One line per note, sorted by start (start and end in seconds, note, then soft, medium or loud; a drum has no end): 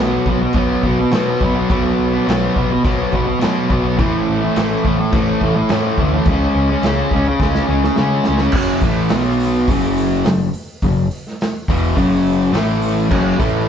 0.00 0.16 B1 medium
0.00 0.27 B2 loud
0.00 0.29 F#3 loud
0.00 0.31 B3 loud
0.26 0.45 B1 medium
0.26 0.53 B2 medium
0.26 0.42 F#3 medium
0.26 kick medium
0.31 0.40 B3 medium
0.41 muted distorted electric guitar stroke medium
0.53 0.74 B1 loud
0.53 0.82 B2 medium
0.53 0.84 F#3 medium
0.53 kick loud
0.53 crash medium
0.58 0.85 B3 medium
0.83 1.03 B1 loud
0.83 1.10 B2 medium
0.83 0.99 F#3 medium
0.83 0.98 B3 medium
0.83 kick medium
0.99 muted distorted electric guitar stroke medium
1.11 1.31 B2 loud
1.11 1.40 B2 medium
1.11 1.41 F#3 medium
1.11 1.43 B3 loud
1.11 snare loud
1.11 crash medium
1.41 1.60 B1 medium
1.41 1.68 B2 medium
1.41 1.57 F#3 medium
1.41 1.54 B3 medium
1.41 kick medium
1.55 1.70 F#3 medium
1.55 1.71 B3 medium
1.69 1.89 B1 loud
1.69 2.26 B2 medium
1.69 2.15 F#3 medium
1.69 2.12 B3 loud
1.69 kick loud
1.69 crash medium
1.98 2.17 B1 medium
2.13 2.28 F#3 medium
2.13 2.29 B3 medium
2.27 2.46 B1 loud
2.27 2.54 B2 medium
2.27 2.56 F#3 loud
2.27 2.57 B3 loud
2.27 snare loud
2.27 crash medium
2.55 2.75 B1 loud
2.55 2.83 B2 medium
2.55 2.71 F#3 medium
2.55 2.70 B3 medium
2.55 kick medium
2.71 muted distorted electric guitar stroke medium
2.84 3.03 B1 loud
2.84 3.11 B2 medium
2.84 3.13 F#3 medium
2.84 3.14 B3 medium
2.84 kick loud
2.84 crash medium
3.12 3.32 B1 medium
3.12 3.38 B2 medium
3.12 3.26 F#3 medium
3.12 3.25 B3 medium
3.12 kick medium
3.27 muted distorted electric guitar stroke medium
3.39 3.68 B2 medium
3.39 3.70 F#3 loud
3.39 3.71 B3 loud
3.39 snare loud
3.39 crash medium
3.44 3.62 B2 loud
3.69 3.99 B1 medium
3.69 3.96 B2 medium
3.69 3.86 F#3 medium
3.69 3.82 B3 medium
3.69 kick medium
3.84 3.98 F#3 medium
3.84 3.96 B3 medium
3.98 4.18 A1 medium
3.98 4.54 A2 medium
3.98 4.44 E3 loud
3.98 4.39 A3 loud
3.98 kick loud
3.98 crash medium
4.28 4.47 A1 medium
4.41 4.57 E3 medium
4.41 4.57 A3 medium
4.55 4.75 A1 medium
4.55 4.82 A2 medium
4.55 4.85 E3 loud
4.55 4.86 A3 loud
4.55 snare loud
4.55 crash medium
4.84 5.04 A1 medium
4.84 5.11 A2 medium
4.84 4.99 E3 medium
4.84 4.97 A3 medium
4.84 kick loud
4.98 muted distorted electric guitar stroke medium
5.12 5.31 A1 loud
5.12 5.39 A2 medium
5.12 5.41 E3 medium
5.12 5.43 A3 medium
5.12 kick loud
5.12 crash medium
5.41 5.60 A1 loud
5.41 5.69 A2 medium
5.41 5.55 E3 medium
5.41 5.54 A3 medium
5.41 kick medium
5.56 muted distorted electric guitar stroke medium
5.69 5.88 A2 loud
5.69 5.98 A2 loud
5.69 6.00 E3 loud
5.69 snare loud
5.69 crash medium
5.74 6.01 A3 loud
5.98 6.17 D2 medium
5.98 6.25 A2 medium
5.98 6.15 E3 medium
5.98 kick loud
6.02 6.12 A3 medium
6.13 6.26 E3 medium
6.13 6.25 A3 medium
6.26 6.46 C#2 loud
6.26 6.83 C#3 medium
6.26 6.72 G#3 medium
6.26 kick loud
6.26 crash medium
6.31 6.69 C#4 loud
6.54 6.73 C#2 medium
6.70 6.85 G#3 medium
6.70 6.86 C#4 medium
6.82 7.01 C#2 medium
6.82 7.12 C#3 medium
6.82 7.14 G#3 loud
6.82 snare loud
6.82 crash medium
6.87 7.14 C#4 loud
7.11 7.31 C#2 medium
7.11 7.40 C#3 medium
7.11 7.28 G#3 medium
7.11 kick medium
7.16 7.27 C#4 medium
7.29 muted distorted electric guitar stroke medium
7.40 7.59 C#2 loud
7.40 7.67 C#3 medium
7.40 7.69 G#3 medium
7.40 kick loud
7.40 snare medium
7.45 7.69 C#4 medium
7.55 snare medium
7.68 7.88 C#2 medium
7.68 7.97 C#3 medium
7.68 7.83 G#3 medium
7.68 7.83 C#4 medium
7.84 muted distorted electric guitar stroke soft
7.84 snare medium
7.96 8.17 C#3 medium
7.96 8.25 C#3 loud
7.96 8.26 G#3 loud
7.96 snare medium
8.00 8.27 C#4 loud
8.24 8.46 C#2 medium
8.24 8.53 C#3 medium
8.24 8.42 G#3 medium
8.24 snare loud
8.28 8.40 C#4 medium
8.38 8.53 C#4 medium
8.38 snare medium
8.44 8.54 G#3 medium
8.52 8.80 F#1 loud
8.52 8.82 F#2 medium
8.52 8.82 C#3 loud
8.52 kick loud
8.52 crash loud
8.56 8.83 F#3 loud
8.81 9.09 A1 loud
8.81 9.11 A2 loud
8.81 9.11 E3 loud
8.81 9.11 A3 loud
8.81 kick loud
8.81 open hi-hat medium
9.09 9.64 B1 medium
9.09 9.68 B2 medium
9.09 9.68 F#3 loud
9.09 snare loud
9.09 open hi-hat medium
9.13 9.68 B3 loud
9.40 open hi-hat medium
9.68 10.21 F#1 loud
9.68 10.24 F#2 medium
9.68 10.25 C#3 medium
9.68 10.26 F#3 loud
9.68 kick loud
9.68 open hi-hat medium
9.96 open hi-hat medium
10.25 10.52 F#1 medium
10.25 10.48 F#2 medium
10.25 10.49 C#3 medium
10.25 snare loud
10.25 open hi-hat medium
10.53 open hi-hat medium
10.82 11.09 F#1 medium
10.82 11.06 F#2 medium
10.82 11.06 C#3 medium
10.82 kick medium
10.82 open hi-hat medium
11.11 open hi-hat medium
11.27 snare soft
11.41 snare loud
11.41 open hi-hat medium
11.68 11.95 E1 medium
11.68 11.96 E2 medium
11.68 11.96 B2 loud
11.68 11.97 E3 loud
11.68 kick loud
11.68 open hi-hat medium
11.96 12.50 F#1 loud
11.96 12.53 F#2 medium
11.96 12.53 C#3 loud
11.96 12.53 F#3 loud
11.96 kick loud
11.96 open hi-hat medium
12.26 open hi-hat medium
12.52 13.06 A1 loud
12.52 13.10 A2 medium
12.52 13.10 E3 loud
12.52 13.10 A3 loud
12.52 snare loud
12.52 open hi-hat medium
12.82 open hi-hat medium
13.09 13.37 F#1 loud
13.09 13.38 F#2 medium
13.09 13.38 C#3 loud
13.09 13.38 F#3 loud
13.09 kick loud
13.09 crash loud
13.38 13.66 A1 loud
13.38 13.68 A2 loud
13.38 13.69 E3 loud
13.38 13.69 A3 loud
13.38 kick loud
13.38 open hi-hat medium